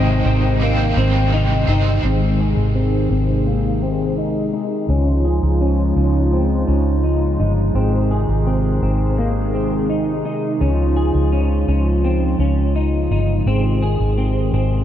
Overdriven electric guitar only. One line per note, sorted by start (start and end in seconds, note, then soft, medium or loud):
0.00 0.60 G#2 medium
0.00 2.55 D#3 medium
0.00 0.59 G#3 medium
0.00 0.61 C4 medium
0.00 0.62 D#4 medium
0.00 0.63 C5 loud
0.59 1.67 G3 medium
0.59 1.69 C4 medium
0.59 1.68 D#4 medium
0.64 1.67 C5 medium
1.67 2.05 G3 medium
1.67 2.04 C4 medium
1.67 2.04 D#4 medium
1.67 2.03 C5 medium